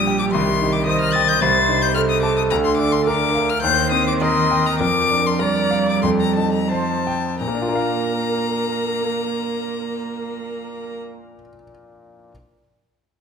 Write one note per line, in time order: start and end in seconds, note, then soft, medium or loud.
0.00 0.31 A#1 medium
0.00 0.34 G3 medium
0.00 0.36 D4 medium
0.00 0.85 G4 medium
0.00 0.23 D5 medium
0.00 0.18 D#6 loud
0.07 0.34 G5 medium
0.19 0.25 D6 loud
0.32 1.39 C2 medium
0.32 1.42 D#3 medium
0.32 0.74 C6 loud
0.62 1.05 D#4 medium
0.73 0.86 D6 loud
0.86 1.31 C5 medium
0.86 1.43 D#5 loud
0.86 1.00 D#6 loud
1.01 1.15 F6 loud
1.13 1.42 G5 medium
1.13 1.30 A6 loud
1.29 1.42 G6 loud
1.41 2.48 C2 medium
1.41 2.52 C3 medium
1.41 1.95 C5 loud
1.41 1.84 A6 loud
1.69 2.12 D#4 medium
1.82 1.94 G6 loud
1.95 3.09 A4 loud
1.95 2.40 C5 medium
1.95 2.01 F6 loud
2.10 2.22 D#6 loud
2.22 2.51 A5 medium
2.22 2.36 D6 loud
2.37 2.43 D#6 loud
2.50 3.61 D2 medium
2.50 3.64 D3 medium
2.50 2.56 A#5 loud
2.65 2.77 C6 loud
2.78 3.24 D4 medium
2.78 2.94 D6 loud
2.93 3.06 C6 loud
3.07 3.53 A#4 medium
3.07 3.63 A#4 loud
3.07 3.52 D6 loud
3.35 3.64 F5 medium
3.50 3.62 F6 loud
3.63 4.77 D#2 medium
3.63 4.79 D#3 medium
3.63 4.23 C5 loud
3.63 3.92 G6 loud
3.92 4.39 C4 medium
3.92 4.07 D#6 loud
4.08 4.13 D6 loud
4.21 4.69 A#4 medium
4.21 4.82 D#5 medium
4.21 4.68 C6 loud
4.51 4.81 G5 medium
4.66 4.80 A#5 loud
4.80 6.01 F2 medium
4.80 5.42 F3 medium
4.80 5.43 A#4 medium
4.80 5.28 D6 loud
5.10 5.60 D4 medium
5.27 5.41 C6 loud
5.39 6.70 G3 medium
5.39 5.91 A#4 medium
5.39 6.04 D5 medium
5.39 5.88 A#5 loud
5.71 6.04 F5 medium
5.89 6.02 D6 loud
6.03 7.36 F2 medium
6.03 6.69 A4 medium
6.03 6.10 C6 loud
6.21 6.36 A#5 loud
6.36 6.91 D#4 medium
6.36 6.53 A5 medium
6.53 6.71 A#5 medium
6.69 7.14 F3 medium
6.69 7.04 C5 medium
6.69 7.27 C5 medium
6.69 7.40 A5 loud
7.07 7.41 G5 medium
7.39 11.34 A#2 medium
7.39 10.96 A#3 medium
7.39 10.96 A#4 medium
7.39 10.96 A#5 loud
7.48 11.41 A#3 medium
7.55 11.48 D4 medium
7.62 11.55 F4 medium
7.69 11.62 A#4 medium
7.75 11.68 F5 medium